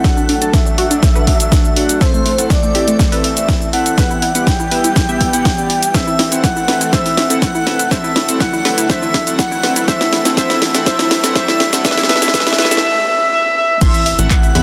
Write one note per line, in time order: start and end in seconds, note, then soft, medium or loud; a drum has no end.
0.00 1.97 A4 medium
0.00 0.44 F#5 loud
0.04 1.99 F#3 medium
0.04 1.99 A3 medium
0.04 0.23 D4 loud
0.04 1.99 D4 medium
0.04 0.23 F#4 medium
0.04 0.23 A4 medium
0.04 0.13 A4 loud
0.04 0.23 F#5 loud
0.04 kick loud
0.04 snare medium
0.04 closed hi-hat medium
0.04 shaker medium
0.17 0.25 D4 medium
0.17 shaker soft
0.29 0.38 D4 medium
0.29 open hi-hat loud
0.42 0.60 D4 medium
0.42 0.60 F#4 medium
0.42 0.60 A4 medium
0.42 0.60 A5 medium
0.42 closed hi-hat medium
0.42 shaker medium
0.53 0.62 D4 medium
0.53 1.92 E5 loud
0.53 kick loud
0.53 snare medium
0.53 closed hi-hat medium
0.53 shaker medium
0.66 0.74 D4 medium
0.66 shaker soft
0.78 0.90 D4 medium
0.78 0.90 F#4 medium
0.78 0.87 F#4 medium
0.78 0.90 A4 medium
0.78 0.90 F#5 medium
0.78 open hi-hat loud
0.91 0.99 D4 medium
0.91 closed hi-hat medium
0.91 shaker medium
1.03 1.11 D4 medium
1.03 kick loud
1.03 snare medium
1.03 closed hi-hat medium
1.03 shaker medium
1.15 1.27 D4 medium
1.15 1.27 F#4 medium
1.15 1.27 A4 medium
1.15 1.92 B4 medium
1.15 1.27 F#5 loud
1.15 shaker soft
1.27 kick medium
1.27 open hi-hat loud
1.40 closed hi-hat medium
1.40 shaker medium
1.52 1.64 D4 medium
1.52 1.64 F#4 medium
1.52 1.64 A4 medium
1.52 1.64 F#5 loud
1.52 kick loud
1.52 snare medium
1.52 closed hi-hat medium
1.52 shaker medium
1.65 shaker soft
1.76 1.98 D4 medium
1.76 1.98 F#4 medium
1.76 1.98 A4 medium
1.76 1.98 F#5 loud
1.76 open hi-hat loud
1.89 closed hi-hat medium
1.89 shaker medium
2.01 7.87 E3 medium
2.01 3.96 A3 medium
2.01 2.20 C4 medium
2.01 3.96 C4 medium
2.01 2.20 E4 medium
2.01 3.96 A4 medium
2.01 2.10 A4 loud
2.01 2.20 A4 medium
2.01 2.45 C5 loud
2.01 2.46 C5 loud
2.01 2.20 E5 loud
2.01 kick loud
2.01 snare medium
2.01 closed hi-hat soft
2.01 shaker medium
2.14 2.22 A3 medium
2.14 shaker soft
2.26 2.34 A3 medium
2.26 open hi-hat loud
2.38 2.57 C4 medium
2.38 2.57 E4 medium
2.38 2.57 A4 medium
2.38 2.57 F#5 medium
2.38 closed hi-hat medium
2.38 shaker medium
2.50 2.59 A3 medium
2.50 3.15 D5 loud
2.50 kick loud
2.50 snare medium
2.50 closed hi-hat medium
2.50 shaker medium
2.63 2.71 A3 medium
2.63 shaker soft
2.75 2.87 C4 medium
2.75 2.87 E4 medium
2.75 2.84 G4 medium
2.75 2.87 A4 medium
2.75 2.87 E5 medium
2.75 open hi-hat loud
2.88 2.96 A3 medium
2.88 closed hi-hat medium
2.88 shaker medium
2.99 3.08 A3 medium
2.99 kick loud
2.99 snare medium
2.99 closed hi-hat medium
2.99 shaker medium
3.12 3.24 C4 medium
3.12 3.24 E4 medium
3.12 3.24 A4 medium
3.12 3.88 B4 medium
3.12 3.24 E5 loud
3.12 open hi-hat medium
3.12 shaker soft
3.24 3.68 E5 medium
3.24 open hi-hat loud
3.37 closed hi-hat medium
3.37 shaker medium
3.48 3.61 C4 medium
3.48 3.61 E4 medium
3.48 3.61 A4 medium
3.48 3.61 E5 loud
3.48 kick loud
3.48 snare medium
3.48 closed hi-hat soft
3.48 shaker medium
3.62 shaker soft
3.73 3.95 C4 medium
3.73 3.95 E4 medium
3.73 3.95 A4 medium
3.73 3.95 E5 loud
3.73 4.48 F#5 loud
3.73 open hi-hat loud
3.86 closed hi-hat medium
3.86 shaker medium
3.98 5.93 G3 medium
3.98 4.17 B3 medium
3.98 5.93 B3 medium
3.98 4.17 E4 medium
3.98 4.17 G4 medium
3.98 5.93 G4 medium
3.98 4.06 B4 loud
3.98 4.17 E5 loud
3.98 kick loud
3.98 snare medium
3.98 closed hi-hat soft
3.98 shaker medium
4.11 4.19 E4 medium
4.11 shaker soft
4.22 4.31 E4 medium
4.22 open hi-hat loud
4.35 4.54 B3 medium
4.35 4.54 E4 medium
4.35 4.54 G4 medium
4.35 4.54 F#5 medium
4.35 closed hi-hat medium
4.35 shaker medium
4.47 4.56 E4 medium
4.47 5.94 G5 loud
4.47 kick loud
4.47 snare medium
4.47 closed hi-hat soft
4.47 shaker medium
4.60 4.68 E4 medium
4.60 shaker soft
4.71 4.84 B3 medium
4.71 4.84 E4 medium
4.71 4.84 G4 medium
4.71 4.80 B4 medium
4.71 4.84 E5 medium
4.71 open hi-hat loud
4.84 4.92 E4 medium
4.84 closed hi-hat medium
4.84 shaker medium
4.96 5.05 E4 medium
4.96 kick loud
4.96 snare medium
4.96 closed hi-hat soft
4.96 shaker medium
5.09 5.20 B3 loud
5.09 5.20 E4 medium
5.09 5.20 G4 medium
5.09 5.20 E5 loud
5.09 5.85 E5 medium
5.09 shaker soft
5.21 kick medium
5.21 open hi-hat loud
5.33 5.52 B3 medium
5.33 5.52 E4 medium
5.33 5.52 G4 medium
5.33 5.52 F#5 medium
5.33 closed hi-hat medium
5.33 shaker medium
5.45 kick loud
5.45 snare medium
5.45 closed hi-hat soft
5.45 shaker medium
5.58 5.69 B3 medium
5.58 5.69 E4 medium
5.58 5.69 G4 medium
5.58 5.69 D5 medium
5.58 shaker soft
5.70 open hi-hat loud
5.83 closed hi-hat medium
5.83 shaker medium
5.94 11.81 A3 medium
5.94 6.14 C4 medium
5.94 7.89 C4 medium
5.94 6.14 E4 medium
5.94 6.14 A4 medium
5.94 11.81 A4 medium
5.94 6.03 C5 loud
5.94 6.14 E5 loud
5.94 6.39 E5 loud
5.94 kick loud
5.94 snare medium
5.94 closed hi-hat medium
5.94 riser medium
5.94 shaker medium
6.07 6.15 E4 medium
6.07 shaker soft
6.19 6.28 E4 medium
6.19 snare medium
6.19 open hi-hat loud
6.32 6.51 C4 medium
6.32 6.51 E4 medium
6.32 6.51 A4 medium
6.32 6.51 F#5 medium
6.32 closed hi-hat medium
6.32 shaker medium
6.44 6.52 E4 medium
6.44 6.91 F#5 medium
6.44 kick loud
6.44 snare medium
6.44 closed hi-hat soft
6.44 shaker medium
6.56 6.65 E4 medium
6.56 shaker soft
6.68 6.81 C4 medium
6.68 6.81 E4 medium
6.68 6.81 A4 medium
6.68 6.77 B4 medium
6.68 6.81 E5 medium
6.68 snare medium
6.68 open hi-hat loud
6.81 6.89 E4 medium
6.81 closed hi-hat medium
6.81 shaker medium
6.93 7.12 C4 medium
6.93 7.12 E4 medium
6.93 7.12 A4 medium
6.93 7.02 C5 medium
6.93 7.12 E5 loud
6.93 7.37 E5 loud
6.93 7.37 E5 medium
6.93 kick loud
6.93 snare medium
6.93 closed hi-hat soft
6.93 shaker medium
7.06 7.14 E4 medium
7.06 open hi-hat medium
7.06 shaker soft
7.17 7.26 E4 medium
7.17 snare medium
7.17 open hi-hat loud
7.30 7.49 C4 medium
7.30 7.49 E4 medium
7.30 7.49 A4 medium
7.30 7.49 F#5 medium
7.30 closed hi-hat medium
7.30 shaker medium
7.42 7.51 E4 medium
7.42 7.89 F#5 medium
7.42 7.89 F#5 loud
7.42 kick loud
7.42 snare medium
7.42 closed hi-hat soft
7.42 shaker medium
7.55 7.63 E4 medium
7.55 shaker soft
7.67 7.79 C4 medium
7.67 7.79 E4 medium
7.67 7.79 A4 medium
7.67 7.75 B4 medium
7.67 7.79 E5 medium
7.67 snare medium
7.67 open hi-hat loud
7.79 7.88 E4 medium
7.79 closed hi-hat medium
7.79 shaker medium
7.91 9.86 F#3 medium
7.91 8.10 C4 medium
7.91 9.86 D4 medium
7.91 8.10 E4 medium
7.91 8.10 A4 medium
7.91 8.00 C5 loud
7.91 8.10 E5 loud
7.91 8.36 E5 loud
7.91 kick loud
7.91 snare medium
7.91 closed hi-hat medium
7.91 shaker medium
8.04 8.12 E4 medium
8.04 shaker soft
8.16 8.25 E4 medium
8.16 snare medium
8.16 open hi-hat loud
8.29 8.47 C4 medium
8.29 8.47 E4 medium
8.29 8.47 A4 medium
8.29 8.47 F#5 medium
8.29 closed hi-hat medium
8.29 shaker medium
8.40 8.49 E4 medium
8.40 8.88 F#5 medium
8.40 kick loud
8.40 snare medium
8.40 closed hi-hat soft
8.40 shaker medium
8.53 8.61 E4 medium
8.53 shaker soft
8.65 8.77 C4 medium
8.65 8.77 E4 medium
8.65 8.77 A4 medium
8.65 8.74 B4 medium
8.65 8.77 E5 medium
8.65 snare medium
8.65 open hi-hat loud
8.78 8.86 E4 medium
8.78 closed hi-hat medium
8.78 shaker medium
8.90 9.09 C4 medium
8.90 9.09 E4 medium
8.90 9.09 A4 medium
8.90 8.98 C5 loud
8.90 9.09 E5 loud
8.90 9.34 E5 loud
8.90 kick loud
8.90 snare medium
8.90 closed hi-hat medium
8.90 shaker medium
9.02 9.10 E4 medium
9.02 shaker soft
9.14 9.23 E4 medium
9.14 kick medium
9.14 snare medium
9.14 open hi-hat loud
9.27 9.46 C4 medium
9.27 9.46 E4 medium
9.27 9.46 A4 medium
9.27 9.46 F#5 medium
9.27 closed hi-hat medium
9.27 shaker medium
9.39 9.48 E4 medium
9.39 9.86 F#5 loud
9.39 kick loud
9.39 snare medium
9.39 closed hi-hat medium
9.39 shaker medium
9.52 9.60 E4 medium
9.52 shaker soft
9.63 9.76 C4 medium
9.63 9.76 E4 medium
9.63 9.76 A4 medium
9.63 9.72 B4 medium
9.63 9.76 E5 medium
9.63 snare medium
9.63 open hi-hat loud
9.76 9.84 E4 medium
9.76 closed hi-hat medium
9.76 shaker medium
9.88 12.80 E3 medium
9.88 11.83 C4 medium
9.88 10.07 C4 loud
9.88 10.07 E4 medium
9.88 10.07 A4 medium
9.88 9.97 C5 loud
9.88 10.07 E5 loud
9.88 10.32 E5 loud
9.88 kick loud
9.88 snare medium
9.88 closed hi-hat medium
9.88 shaker medium
10.01 10.09 E4 medium
10.01 snare medium
10.01 shaker soft
10.13 10.21 E4 medium
10.13 snare medium
10.13 open hi-hat loud
10.25 10.35 C4 medium
10.25 10.35 E4 medium
10.25 10.35 A4 medium
10.25 10.35 F#5 medium
10.25 snare medium
10.25 closed hi-hat medium
10.25 shaker medium
10.37 10.56 C4 medium
10.37 10.56 E4 medium
10.37 10.56 A4 medium
10.37 10.46 C5 loud
10.37 10.56 E5 loud
10.37 10.82 E5 loud
10.37 kick loud
10.37 snare medium
10.37 closed hi-hat medium
10.37 shaker medium
10.50 10.58 E4 medium
10.50 snare medium
10.50 shaker soft
10.62 10.70 E4 medium
10.62 snare medium
10.62 open hi-hat loud
10.74 10.84 C4 medium
10.74 10.84 E4 medium
10.74 10.84 A4 medium
10.74 10.84 F#5 medium
10.74 snare medium
10.74 closed hi-hat medium
10.74 shaker medium
10.86 11.05 C4 loud
10.86 11.05 E4 medium
10.86 11.05 A4 medium
10.86 10.95 C5 loud
10.86 11.31 E5 loud
10.86 11.05 E5 loud
10.86 11.31 E5 loud
10.86 kick loud
10.86 snare loud
10.86 closed hi-hat medium
10.86 shaker medium
10.99 11.07 E4 medium
10.99 snare medium
10.99 open hi-hat medium
10.99 shaker soft
11.11 11.20 E4 medium
11.11 snare loud
11.11 open hi-hat loud
11.24 11.34 C4 medium
11.24 11.34 E4 medium
11.24 11.34 A4 medium
11.24 11.34 F#5 medium
11.24 snare medium
11.24 closed hi-hat medium
11.24 shaker medium
11.35 11.55 C4 loud
11.35 11.55 E4 medium
11.35 11.55 A4 medium
11.35 11.44 C5 loud
11.35 11.55 E5 loud
11.35 11.80 E5 loud
11.35 kick loud
11.35 snare loud
11.35 closed hi-hat medium
11.35 shaker medium
11.48 11.56 E4 medium
11.48 snare medium
11.48 shaker soft
11.60 11.69 E4 medium
11.60 snare loud
11.60 open hi-hat loud
11.73 11.83 C4 medium
11.73 11.83 E4 medium
11.73 11.83 A4 medium
11.73 11.83 F#5 medium
11.73 snare medium
11.73 closed hi-hat medium
11.73 shaker medium
11.85 12.82 G3 medium
11.85 12.82 B3 medium
11.85 12.04 B3 medium
11.85 12.04 E4 medium
11.85 12.82 G4 medium
11.85 12.04 A4 medium
11.85 11.93 B4 loud
11.85 12.07 E5 loud
11.85 12.04 E5 loud
11.85 12.07 E5 loud
11.85 kick loud
11.85 snare loud
11.85 closed hi-hat medium
11.85 shaker medium
11.91 snare medium
11.97 12.05 E4 medium
11.97 snare medium
11.97 shaker soft
12.03 snare medium
12.09 12.28 B3 loud
12.09 12.28 E4 medium
12.09 12.28 A4 medium
12.09 12.18 B4 loud
12.09 12.32 E5 loud
12.09 12.28 E5 loud
12.09 12.32 E5 loud
12.09 snare loud
12.09 open hi-hat loud
12.16 snare medium
12.22 12.30 E4 medium
12.22 snare medium
12.22 closed hi-hat medium
12.22 shaker medium
12.28 snare medium
12.34 12.53 B3 loud
12.34 12.53 E4 medium
12.34 12.53 A4 medium
12.34 12.43 B4 loud
12.34 12.53 E5 loud
12.34 12.57 E5 loud
12.34 kick loud
12.34 snare loud
12.34 closed hi-hat medium
12.34 shaker medium
12.40 snare medium
12.47 12.55 E4 medium
12.47 snare medium
12.47 shaker soft
12.53 snare medium
12.58 12.78 B3 loud
12.58 12.78 E4 medium
12.58 12.78 A4 medium
12.58 12.67 B4 loud
12.58 12.78 E5 loud
12.58 12.81 E5 loud
12.58 snare loud
12.58 open hi-hat loud
12.65 snare medium
12.71 12.79 E4 medium
12.71 snare medium
12.71 closed hi-hat medium
12.71 shaker medium
12.77 snare medium
12.83 13.06 E5 loud
13.08 13.30 E5 loud
13.32 13.55 E5 loud
13.57 13.79 E5 loud
13.81 14.14 A1 loud
13.81 14.63 C3 medium
13.81 14.63 E3 medium
13.81 14.63 A3 medium
13.81 14.01 C4 medium
13.81 14.63 E4 loud
13.81 14.01 E4 medium
13.81 14.01 A4 medium
13.81 14.01 E5 loud
13.81 14.26 E5 loud
13.81 13.90 C6 loud
13.81 kick loud
13.81 closed hi-hat loud
13.81 crash loud
13.81 shaker medium
13.94 14.02 E5 medium
13.94 closed hi-hat soft
13.94 shaker soft
14.06 14.15 E5 medium
14.06 open hi-hat loud
14.19 14.51 A1 medium
14.19 14.37 C4 medium
14.19 14.37 E4 medium
14.19 14.37 A4 medium
14.19 14.37 F#5 medium
14.19 closed hi-hat soft
14.19 shaker medium
14.31 14.39 E5 medium
14.31 14.63 F#5 loud
14.31 kick loud
14.31 clap loud
14.31 closed hi-hat loud
14.31 shaker medium
14.43 14.51 E5 medium
14.43 closed hi-hat soft
14.43 shaker soft
14.55 14.63 E2 loud
14.55 14.63 C4 medium
14.55 14.63 E4 medium
14.55 14.63 A4 medium
14.55 14.63 E5 medium
14.55 14.63 B5 loud
14.55 open hi-hat loud